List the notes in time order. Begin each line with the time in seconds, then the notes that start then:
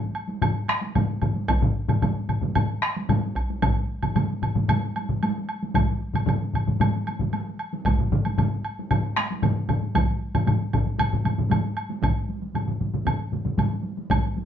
0.15 high woodblock
0.28 taiko high
0.42 taiko low-mid, taiko mid, taiko high, high woodblock
0.68 taiko rim, taiko high, high woodblock
0.81 taiko high
0.95 taiko low-mid, taiko mid, taiko high, high woodblock
1.22 taiko low-mid, taiko mid, high woodblock
1.36 taiko high
1.48 taiko, taiko high, high woodblock
1.62 taiko low-mid, taiko mid
1.89 taiko low-mid, taiko mid, taiko high, high woodblock
2.02 taiko low-mid, taiko mid, taiko high, high woodblock
2.29 taiko low-mid, taiko mid, high woodblock
2.41 taiko low-mid, taiko mid, taiko high
2.55 taiko low-mid, taiko mid, taiko high, high woodblock
2.82 taiko rim, high woodblock
2.97 taiko high
3.09 taiko low-mid, taiko mid, taiko high, high woodblock
3.35 taiko, high woodblock
3.50 taiko high
3.62 taiko, taiko low-mid, taiko mid, taiko high, high woodblock
4.03 taiko low-mid, taiko mid, taiko high, high woodblock
4.15 taiko low-mid, taiko mid, taiko high, high woodblock
4.42 taiko low-mid, taiko mid, high woodblock
4.55 taiko low-mid, taiko mid, taiko high
4.68 taiko low-mid, taiko mid, taiko high, high woodblock
4.96 taiko high, high woodblock
5.09 taiko low-mid, taiko mid, taiko high
5.23 taiko high, high woodblock
5.49 high woodblock
5.63 taiko high
5.74 taiko, taiko low-mid, taiko mid, taiko high, high woodblock
6.14 taiko low-mid, taiko mid, taiko high, high woodblock
6.26 taiko low-mid, taiko mid, taiko high, high woodblock
6.54 taiko low-mid, taiko mid, high woodblock
6.67 taiko low-mid, taiko mid, taiko high
6.80 taiko low-mid, taiko mid, taiko high, high woodblock
7.07 taiko high, high woodblock
7.19 taiko low-mid, taiko mid, taiko high
7.33 taiko high, high woodblock
7.59 high woodblock
7.73 taiko high
7.85 taiko, taiko low-mid, taiko mid, taiko high, high woodblock
7.98 taiko low-mid, taiko mid
8.12 taiko low-mid, taiko mid
8.25 taiko high, high woodblock
8.38 taiko low-mid, taiko mid, taiko high, high woodblock
8.65 high woodblock
8.79 taiko high
8.91 taiko low-mid, taiko mid, taiko high, high woodblock
9.16 taiko rim, taiko high, high woodblock
9.31 taiko high
9.43 taiko low-mid, taiko mid, taiko high, high woodblock
9.69 taiko low-mid, taiko mid, high woodblock
9.82 taiko high
9.95 taiko, taiko low-mid, taiko mid, taiko high, high woodblock
10.34 taiko low-mid, taiko mid, taiko high, high woodblock
10.47 taiko low-mid, taiko mid, taiko high, high woodblock
10.73 taiko, taiko low-mid, taiko mid, high woodblock
10.86 taiko high
10.98 taiko low-mid, taiko mid, taiko high, high woodblock
11.13 taiko low-mid, taiko mid
11.25 taiko low-mid, taiko mid, taiko high, high woodblock
11.38 taiko low-mid, taiko mid, taiko high
11.51 taiko low-mid, taiko mid, taiko high, high woodblock
11.77 high woodblock
11.89 taiko high
12.03 taiko, taiko low-mid, taiko mid, taiko high, high woodblock
12.29 taiko high
12.42 taiko high
12.55 taiko low-mid, taiko mid, taiko high, high woodblock
12.68 taiko low-mid, taiko mid
12.81 taiko low-mid, taiko mid, taiko high
12.93 taiko low-mid, taiko mid, taiko high
13.06 taiko low-mid, taiko mid, taiko high, high woodblock
13.32 taiko low-mid, taiko mid, taiko high
13.45 taiko low-mid, taiko mid, taiko high
13.58 taiko low-mid, taiko mid, taiko high, high woodblock
13.84 taiko high
13.97 taiko high
14.10 taiko, taiko low-mid, taiko mid, taiko high, high woodblock
14.37 taiko high